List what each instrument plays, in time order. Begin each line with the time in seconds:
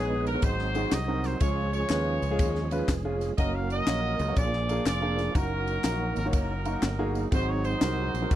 Already playing: fingered electric bass A#1, upright piano G#2 B3 D#4 G#4 C#5, tonewheel organ G#3 B3 D#4 B4, horn section G#4
0.26 horn section A#4, ride, tambourine
0.34 upright piano B3 D#4 G#4 C#5
0.42 fingered electric bass G#1, upright piano G#2, tonewheel organ F#3 C4 D#4 G#4, horn section D#4 F#4 C5, kick, ride, tambourine
0.59 snare
0.75 upright piano C4 D#4 F#4 G#4, ride, tambourine
0.91 fingered electric bass C2, horn section D#5, snare, clap, ride, tambourine
1.08 upright piano C4 D#4 F#4 A#4
1.24 horn section C5, snare, ride, tambourine
1.40 fingered electric bass C#2, upright piano C#3 G#3 C#4 F4 G#4, tonewheel organ F3 G#3 C#4 G#4, horn section F4 G#4 C#5, kick, ride, tambourine
1.73 horn section F4 G#4 C#5, ride, tambourine
1.89 fingered electric bass D#2, upright piano G#3 C#4 F4 B4, snare, clap, ride, tambourine
2.22 fingered electric bass C#2, ride, tambourine
2.31 upright piano G#3 C#4 F4 G#4
2.39 fingered electric bass D#2, kick, ride, tambourine
2.55 snare
2.71 upright piano G#3 C#4 F4 B4, ride, tambourine
2.88 fingered electric bass F1, kick, snare, clap, ride, tambourine
3.04 upright piano G#3 C#4 F4 G#4
3.21 snare, ride, tambourine
3.37 fingered electric bass F#1, tonewheel organ F#3 A#3 C#4 A#4, upright piano A#3 C#4 F#4 A#4, horn section F#4 A#4 D#5, kick, ride, tambourine
3.54 horn section F5
3.70 horn section F#4 A#4 D#5, ride, tambourine
3.87 fingered electric bass A#1, upright piano A#3 C#4 F#4 C#5, snare, clap, ride, tambourine
4.19 fingered electric bass C#2, ride, tambourine
4.28 upright piano A#3 C#4 F#4 C#5
4.36 fingered electric bass A#1, upright piano A#2, tonewheel organ F3 A#3 D4 G#4, horn section F4 G#4 D5, kick, ride, tambourine
4.53 snare
4.69 upright piano A#3 D4 F4 G#4, ride, tambourine
4.86 fingered electric bass F1, horn section F4 G#4 D5, snare, clap, ride, tambourine
5.02 upright piano A#3 D4 F4 G#4
5.19 snare, ride, tambourine
5.35 fingered electric bass F#1, tonewheel organ F3 A#3 D#4 A#4, upright piano A#3 D#4 F#4 A#4, horn section D#4 F#4 A#4, kick, ride, tambourine
5.42 tonewheel organ F#3
5.67 ride, tambourine
5.84 fingered electric bass A#1, upright piano A#3 D#4 F#4 A#4, snare, clap, ride, tambourine
6.16 fingered electric bass G#1, horn section A#4, ride, tambourine
6.25 upright piano A#3 D#4 F#4 C#5
6.33 fingered electric bass F#1, horn section D#4 F#4 A#4, kick, ride, tambourine
6.65 upright piano A#3 D#4 F#4 A#4, ride, tambourine
6.82 fingered electric bass G1, snare, clap, ride, tambourine
6.99 upright piano A#3 D#4 F#4 G#4
7.15 ride, tambourine
7.31 fingered electric bass G#1, upright piano G#2 C4 D#4 F#4 G#4, tonewheel organ F#3 C4 D#4 G4, horn section D#4 F#4 C5, kick, ride, tambourine
7.37 tonewheel organ G#4
7.47 horn section C#5
7.64 horn section D#4 F#4 C5, ride, tambourine
7.81 fingered electric bass C2, upright piano C4 D#4 F#4 A#4, snare, clap, ride, tambourine
8.14 fingered electric bass A#1, ride, tambourine
8.22 upright piano C4 D#4 F#4 A#4
8.31 fingered electric bass C2, horn section C4 D#4 G#4, kick, ride, tambourine